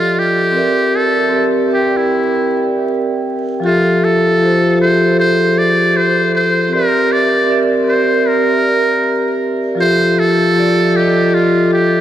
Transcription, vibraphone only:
Already playing: F3 F4 G4 A4 D5 D#5 E5
0.51 C4 G4 A#4
0.57 D5 E5
1.29 C4 G4 A#4
1.34 D5 E5
1.68 C4 G4 A#4
1.73 D5 G5
3.60 F3 F4 G4
3.65 A4 E5
4.37 F3 F4 G4
4.42 A4 C5
4.76 F3 F4 G4
4.81 G#4 E5
4.88 A4
6.69 C4 G4 A#4
6.74 D5 E5
7.44 C4 G4 A#4
7.49 D5 E5
7.83 C4 G4 A#4
7.88 D5 E5
9.75 F3 F4 G4
9.80 A4 E5
10.52 F3 F4 G4
10.57 A4 D5
10.90 F3 F4 G4
10.96 A4 D#5
11.04 E5

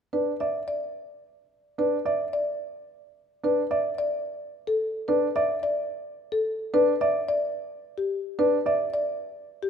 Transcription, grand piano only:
0.13 D4
0.41 D5
1.78 D4
2.06 D5
3.43 D4
3.71 D5
5.08 D4
5.36 D5
6.74 D4
7.01 D5
8.39 D4
8.66 D5

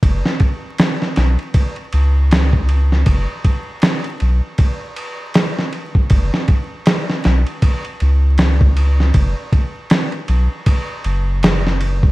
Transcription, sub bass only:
0.03 F#1
1.17 B1
1.93 C#2
3.07 F#1
4.22 B1
6.11 F#1
7.26 B1
8.02 C#2
9.15 F#1
10.29 B1
11.05 F#1

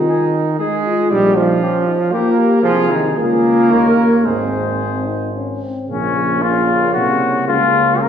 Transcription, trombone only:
Already playing: D#3
0.59 G#3
1.11 G3
1.37 F3
2.13 A#3
2.63 F3
2.89 D#3
3.17 A#3
4.25 G#3
5.89 C#3
6.43 C#3
7.48 C#3
8.02 C#3

